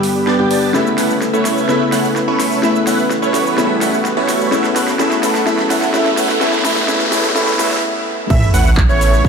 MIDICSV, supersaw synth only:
0, 0, Header, 1, 2, 480
1, 0, Start_track
1, 0, Tempo, 472441
1, 755, Time_signature, 4, 2, 24, 8
1, 9435, End_track
2, 0, Start_track
2, 0, Title_t, "Supersaw synth"
2, 0, Program_c, 0, 81
2, 274, Note_on_c, 0, 74, 79
2, 274, Note_on_c, 0, 81, 97
2, 275, Note_on_c, 0, 59, 91
2, 275, Note_on_c, 0, 62, 83
2, 275, Note_on_c, 0, 67, 79
2, 366, Note_off_c, 0, 59, 0
2, 366, Note_off_c, 0, 62, 0
2, 366, Note_off_c, 0, 67, 0
2, 366, Note_off_c, 0, 74, 0
2, 366, Note_off_c, 0, 81, 0
2, 395, Note_on_c, 0, 59, 81
2, 395, Note_on_c, 0, 62, 75
2, 395, Note_on_c, 0, 67, 74
2, 395, Note_on_c, 0, 74, 76
2, 395, Note_on_c, 0, 79, 93
2, 486, Note_off_c, 0, 59, 0
2, 486, Note_off_c, 0, 62, 0
2, 486, Note_off_c, 0, 67, 0
2, 486, Note_off_c, 0, 74, 0
2, 486, Note_off_c, 0, 79, 0
2, 515, Note_on_c, 0, 59, 76
2, 515, Note_on_c, 0, 67, 72
2, 515, Note_on_c, 0, 74, 74
2, 515, Note_on_c, 0, 81, 86
2, 516, Note_on_c, 0, 62, 69
2, 726, Note_off_c, 0, 59, 0
2, 726, Note_off_c, 0, 62, 0
2, 726, Note_off_c, 0, 67, 0
2, 726, Note_off_c, 0, 74, 0
2, 726, Note_off_c, 0, 81, 0
2, 755, Note_on_c, 0, 57, 78
2, 755, Note_on_c, 0, 61, 77
2, 755, Note_on_c, 0, 64, 77
2, 755, Note_on_c, 0, 71, 73
2, 755, Note_on_c, 0, 76, 86
2, 907, Note_off_c, 0, 57, 0
2, 907, Note_off_c, 0, 61, 0
2, 907, Note_off_c, 0, 64, 0
2, 907, Note_off_c, 0, 71, 0
2, 907, Note_off_c, 0, 76, 0
2, 994, Note_on_c, 0, 57, 74
2, 994, Note_on_c, 0, 61, 66
2, 994, Note_on_c, 0, 64, 66
2, 994, Note_on_c, 0, 71, 68
2, 994, Note_on_c, 0, 78, 81
2, 1146, Note_off_c, 0, 57, 0
2, 1146, Note_off_c, 0, 61, 0
2, 1146, Note_off_c, 0, 64, 0
2, 1146, Note_off_c, 0, 71, 0
2, 1146, Note_off_c, 0, 78, 0
2, 1355, Note_on_c, 0, 57, 73
2, 1355, Note_on_c, 0, 61, 68
2, 1355, Note_on_c, 0, 64, 66
2, 1355, Note_on_c, 0, 71, 63
2, 1355, Note_on_c, 0, 73, 77
2, 1686, Note_off_c, 0, 57, 0
2, 1686, Note_off_c, 0, 61, 0
2, 1686, Note_off_c, 0, 64, 0
2, 1686, Note_off_c, 0, 71, 0
2, 1686, Note_off_c, 0, 73, 0
2, 1713, Note_on_c, 0, 64, 81
2, 1714, Note_on_c, 0, 57, 86
2, 1714, Note_on_c, 0, 61, 84
2, 1714, Note_on_c, 0, 71, 81
2, 1714, Note_on_c, 0, 76, 100
2, 1866, Note_off_c, 0, 57, 0
2, 1866, Note_off_c, 0, 61, 0
2, 1866, Note_off_c, 0, 64, 0
2, 1866, Note_off_c, 0, 71, 0
2, 1866, Note_off_c, 0, 76, 0
2, 1953, Note_on_c, 0, 61, 71
2, 1953, Note_on_c, 0, 64, 72
2, 1953, Note_on_c, 0, 78, 84
2, 1954, Note_on_c, 0, 57, 81
2, 1954, Note_on_c, 0, 71, 70
2, 2106, Note_off_c, 0, 57, 0
2, 2106, Note_off_c, 0, 61, 0
2, 2106, Note_off_c, 0, 64, 0
2, 2106, Note_off_c, 0, 71, 0
2, 2106, Note_off_c, 0, 78, 0
2, 2314, Note_on_c, 0, 61, 70
2, 2314, Note_on_c, 0, 64, 75
2, 2314, Note_on_c, 0, 73, 85
2, 2315, Note_on_c, 0, 57, 80
2, 2315, Note_on_c, 0, 71, 73
2, 2646, Note_off_c, 0, 57, 0
2, 2646, Note_off_c, 0, 61, 0
2, 2646, Note_off_c, 0, 64, 0
2, 2646, Note_off_c, 0, 71, 0
2, 2646, Note_off_c, 0, 73, 0
2, 2674, Note_on_c, 0, 57, 86
2, 2674, Note_on_c, 0, 61, 77
2, 2674, Note_on_c, 0, 64, 77
2, 2674, Note_on_c, 0, 71, 81
2, 2674, Note_on_c, 0, 76, 94
2, 2826, Note_off_c, 0, 57, 0
2, 2826, Note_off_c, 0, 61, 0
2, 2826, Note_off_c, 0, 64, 0
2, 2826, Note_off_c, 0, 71, 0
2, 2826, Note_off_c, 0, 76, 0
2, 2914, Note_on_c, 0, 57, 75
2, 2914, Note_on_c, 0, 61, 69
2, 2914, Note_on_c, 0, 64, 70
2, 2914, Note_on_c, 0, 71, 73
2, 2914, Note_on_c, 0, 78, 85
2, 3066, Note_off_c, 0, 57, 0
2, 3066, Note_off_c, 0, 61, 0
2, 3066, Note_off_c, 0, 64, 0
2, 3066, Note_off_c, 0, 71, 0
2, 3066, Note_off_c, 0, 78, 0
2, 3273, Note_on_c, 0, 71, 66
2, 3273, Note_on_c, 0, 73, 83
2, 3274, Note_on_c, 0, 57, 78
2, 3274, Note_on_c, 0, 61, 65
2, 3274, Note_on_c, 0, 64, 69
2, 3605, Note_off_c, 0, 61, 0
2, 3605, Note_off_c, 0, 64, 0
2, 3605, Note_off_c, 0, 71, 0
2, 3605, Note_off_c, 0, 73, 0
2, 3606, Note_off_c, 0, 57, 0
2, 3635, Note_on_c, 0, 57, 95
2, 3635, Note_on_c, 0, 61, 86
2, 3635, Note_on_c, 0, 64, 84
2, 3635, Note_on_c, 0, 71, 86
2, 3635, Note_on_c, 0, 76, 100
2, 3787, Note_off_c, 0, 57, 0
2, 3787, Note_off_c, 0, 61, 0
2, 3787, Note_off_c, 0, 64, 0
2, 3787, Note_off_c, 0, 71, 0
2, 3787, Note_off_c, 0, 76, 0
2, 3874, Note_on_c, 0, 71, 74
2, 3874, Note_on_c, 0, 78, 89
2, 3875, Note_on_c, 0, 57, 77
2, 3875, Note_on_c, 0, 61, 72
2, 3875, Note_on_c, 0, 64, 76
2, 4026, Note_off_c, 0, 71, 0
2, 4026, Note_off_c, 0, 78, 0
2, 4027, Note_off_c, 0, 57, 0
2, 4027, Note_off_c, 0, 61, 0
2, 4027, Note_off_c, 0, 64, 0
2, 4235, Note_on_c, 0, 57, 82
2, 4235, Note_on_c, 0, 61, 75
2, 4235, Note_on_c, 0, 64, 75
2, 4235, Note_on_c, 0, 71, 73
2, 4235, Note_on_c, 0, 73, 93
2, 4566, Note_off_c, 0, 57, 0
2, 4566, Note_off_c, 0, 61, 0
2, 4566, Note_off_c, 0, 64, 0
2, 4566, Note_off_c, 0, 71, 0
2, 4566, Note_off_c, 0, 73, 0
2, 4595, Note_on_c, 0, 57, 87
2, 4595, Note_on_c, 0, 61, 83
2, 4595, Note_on_c, 0, 64, 81
2, 4595, Note_on_c, 0, 71, 78
2, 4595, Note_on_c, 0, 76, 95
2, 4747, Note_off_c, 0, 57, 0
2, 4747, Note_off_c, 0, 61, 0
2, 4747, Note_off_c, 0, 64, 0
2, 4747, Note_off_c, 0, 71, 0
2, 4747, Note_off_c, 0, 76, 0
2, 4835, Note_on_c, 0, 57, 82
2, 4835, Note_on_c, 0, 61, 73
2, 4835, Note_on_c, 0, 64, 75
2, 4835, Note_on_c, 0, 71, 74
2, 4835, Note_on_c, 0, 78, 84
2, 4987, Note_off_c, 0, 57, 0
2, 4987, Note_off_c, 0, 61, 0
2, 4987, Note_off_c, 0, 64, 0
2, 4987, Note_off_c, 0, 71, 0
2, 4987, Note_off_c, 0, 78, 0
2, 5074, Note_on_c, 0, 57, 89
2, 5074, Note_on_c, 0, 61, 80
2, 5074, Note_on_c, 0, 64, 83
2, 5074, Note_on_c, 0, 71, 85
2, 5074, Note_on_c, 0, 76, 95
2, 5226, Note_off_c, 0, 57, 0
2, 5226, Note_off_c, 0, 61, 0
2, 5226, Note_off_c, 0, 64, 0
2, 5226, Note_off_c, 0, 71, 0
2, 5226, Note_off_c, 0, 76, 0
2, 5314, Note_on_c, 0, 57, 84
2, 5314, Note_on_c, 0, 61, 74
2, 5314, Note_on_c, 0, 64, 74
2, 5314, Note_on_c, 0, 71, 80
2, 5314, Note_on_c, 0, 78, 93
2, 5466, Note_off_c, 0, 57, 0
2, 5466, Note_off_c, 0, 61, 0
2, 5466, Note_off_c, 0, 64, 0
2, 5466, Note_off_c, 0, 71, 0
2, 5466, Note_off_c, 0, 78, 0
2, 5555, Note_on_c, 0, 57, 99
2, 5555, Note_on_c, 0, 61, 87
2, 5555, Note_on_c, 0, 64, 89
2, 5555, Note_on_c, 0, 71, 87
2, 5555, Note_on_c, 0, 76, 102
2, 5707, Note_off_c, 0, 57, 0
2, 5707, Note_off_c, 0, 61, 0
2, 5707, Note_off_c, 0, 64, 0
2, 5707, Note_off_c, 0, 71, 0
2, 5707, Note_off_c, 0, 76, 0
2, 5793, Note_on_c, 0, 57, 82
2, 5794, Note_on_c, 0, 61, 76
2, 5794, Note_on_c, 0, 64, 79
2, 5794, Note_on_c, 0, 71, 73
2, 5794, Note_on_c, 0, 78, 93
2, 5946, Note_off_c, 0, 57, 0
2, 5946, Note_off_c, 0, 61, 0
2, 5946, Note_off_c, 0, 64, 0
2, 5946, Note_off_c, 0, 71, 0
2, 5946, Note_off_c, 0, 78, 0
2, 6034, Note_on_c, 0, 57, 95
2, 6034, Note_on_c, 0, 61, 90
2, 6034, Note_on_c, 0, 71, 90
2, 6034, Note_on_c, 0, 76, 110
2, 6035, Note_on_c, 0, 64, 86
2, 6186, Note_off_c, 0, 57, 0
2, 6186, Note_off_c, 0, 61, 0
2, 6186, Note_off_c, 0, 71, 0
2, 6186, Note_off_c, 0, 76, 0
2, 6187, Note_off_c, 0, 64, 0
2, 6274, Note_on_c, 0, 78, 95
2, 6275, Note_on_c, 0, 57, 87
2, 6275, Note_on_c, 0, 61, 77
2, 6275, Note_on_c, 0, 64, 79
2, 6275, Note_on_c, 0, 71, 78
2, 6426, Note_off_c, 0, 78, 0
2, 6427, Note_off_c, 0, 57, 0
2, 6427, Note_off_c, 0, 61, 0
2, 6427, Note_off_c, 0, 64, 0
2, 6427, Note_off_c, 0, 71, 0
2, 6514, Note_on_c, 0, 57, 87
2, 6514, Note_on_c, 0, 61, 84
2, 6514, Note_on_c, 0, 64, 88
2, 6514, Note_on_c, 0, 71, 82
2, 6514, Note_on_c, 0, 76, 95
2, 6666, Note_off_c, 0, 57, 0
2, 6666, Note_off_c, 0, 61, 0
2, 6666, Note_off_c, 0, 64, 0
2, 6666, Note_off_c, 0, 71, 0
2, 6666, Note_off_c, 0, 76, 0
2, 6754, Note_on_c, 0, 57, 91
2, 6754, Note_on_c, 0, 61, 80
2, 6754, Note_on_c, 0, 64, 90
2, 6754, Note_on_c, 0, 71, 82
2, 6754, Note_on_c, 0, 76, 97
2, 6906, Note_off_c, 0, 57, 0
2, 6906, Note_off_c, 0, 61, 0
2, 6906, Note_off_c, 0, 64, 0
2, 6906, Note_off_c, 0, 71, 0
2, 6906, Note_off_c, 0, 76, 0
2, 6993, Note_on_c, 0, 57, 90
2, 6993, Note_on_c, 0, 61, 89
2, 6993, Note_on_c, 0, 71, 88
2, 6993, Note_on_c, 0, 76, 107
2, 6994, Note_on_c, 0, 64, 86
2, 7146, Note_off_c, 0, 57, 0
2, 7146, Note_off_c, 0, 61, 0
2, 7146, Note_off_c, 0, 64, 0
2, 7146, Note_off_c, 0, 71, 0
2, 7146, Note_off_c, 0, 76, 0
2, 7233, Note_on_c, 0, 61, 84
2, 7233, Note_on_c, 0, 64, 85
2, 7233, Note_on_c, 0, 71, 85
2, 7233, Note_on_c, 0, 76, 108
2, 7234, Note_on_c, 0, 57, 98
2, 7386, Note_off_c, 0, 57, 0
2, 7386, Note_off_c, 0, 61, 0
2, 7386, Note_off_c, 0, 64, 0
2, 7386, Note_off_c, 0, 71, 0
2, 7386, Note_off_c, 0, 76, 0
2, 7473, Note_on_c, 0, 57, 91
2, 7473, Note_on_c, 0, 61, 88
2, 7473, Note_on_c, 0, 71, 89
2, 7473, Note_on_c, 0, 76, 101
2, 7474, Note_on_c, 0, 64, 94
2, 7626, Note_off_c, 0, 57, 0
2, 7626, Note_off_c, 0, 61, 0
2, 7626, Note_off_c, 0, 64, 0
2, 7626, Note_off_c, 0, 71, 0
2, 7626, Note_off_c, 0, 76, 0
2, 7713, Note_on_c, 0, 57, 98
2, 7713, Note_on_c, 0, 61, 91
2, 7713, Note_on_c, 0, 64, 92
2, 7713, Note_on_c, 0, 71, 86
2, 7713, Note_on_c, 0, 76, 109
2, 7866, Note_off_c, 0, 57, 0
2, 7866, Note_off_c, 0, 61, 0
2, 7866, Note_off_c, 0, 64, 0
2, 7866, Note_off_c, 0, 71, 0
2, 7866, Note_off_c, 0, 76, 0
2, 8434, Note_on_c, 0, 57, 89
2, 8434, Note_on_c, 0, 61, 84
2, 8434, Note_on_c, 0, 64, 85
2, 8434, Note_on_c, 0, 71, 80
2, 8434, Note_on_c, 0, 76, 93
2, 8586, Note_off_c, 0, 57, 0
2, 8586, Note_off_c, 0, 61, 0
2, 8586, Note_off_c, 0, 64, 0
2, 8586, Note_off_c, 0, 71, 0
2, 8586, Note_off_c, 0, 76, 0
2, 8673, Note_on_c, 0, 57, 83
2, 8673, Note_on_c, 0, 61, 75
2, 8673, Note_on_c, 0, 64, 76
2, 8674, Note_on_c, 0, 71, 75
2, 8674, Note_on_c, 0, 78, 94
2, 8826, Note_off_c, 0, 57, 0
2, 8826, Note_off_c, 0, 61, 0
2, 8826, Note_off_c, 0, 64, 0
2, 8826, Note_off_c, 0, 71, 0
2, 8826, Note_off_c, 0, 78, 0
2, 9034, Note_on_c, 0, 57, 77
2, 9034, Note_on_c, 0, 61, 74
2, 9034, Note_on_c, 0, 64, 75
2, 9034, Note_on_c, 0, 73, 87
2, 9035, Note_on_c, 0, 71, 74
2, 9366, Note_off_c, 0, 57, 0
2, 9366, Note_off_c, 0, 61, 0
2, 9366, Note_off_c, 0, 64, 0
2, 9366, Note_off_c, 0, 71, 0
2, 9366, Note_off_c, 0, 73, 0
2, 9395, Note_on_c, 0, 64, 97
2, 9395, Note_on_c, 0, 71, 99
2, 9435, Note_off_c, 0, 64, 0
2, 9435, Note_off_c, 0, 71, 0
2, 9435, End_track
0, 0, End_of_file